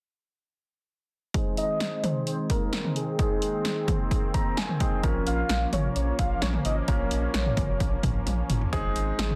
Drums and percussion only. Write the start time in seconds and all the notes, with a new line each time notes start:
1.34 kick, closed hi-hat
1.57 closed hi-hat
1.80 snare, closed hi-hat
2.04 closed hi-hat, mid tom
2.27 closed hi-hat
2.50 kick, closed hi-hat
2.73 snare, closed hi-hat
2.85 mid tom
2.96 closed hi-hat
3.19 kick, closed hi-hat
3.42 closed hi-hat
3.65 snare, closed hi-hat
3.88 kick, closed hi-hat, mid tom
4.11 kick, closed hi-hat
4.34 kick, closed hi-hat
4.57 snare, closed hi-hat
4.69 mid tom
4.80 kick, closed hi-hat
5.03 kick, closed hi-hat
5.27 closed hi-hat
5.49 snare, closed hi-hat
5.73 closed hi-hat, mid tom
5.96 closed hi-hat
6.19 kick, closed hi-hat
6.42 snare, closed hi-hat
6.54 mid tom
6.65 closed hi-hat
6.88 kick, closed hi-hat
7.11 closed hi-hat
7.34 snare, closed hi-hat
7.46 mid tom
7.57 kick, closed hi-hat, mid tom
7.80 kick, closed hi-hat
8.03 kick, closed hi-hat, mid tom
8.27 closed hi-hat, high tom
8.50 closed hi-hat, mid tom
8.61 floor tom
8.73 kick, closed hi-hat
8.96 closed hi-hat
9.19 snare, closed hi-hat
9.31 mid tom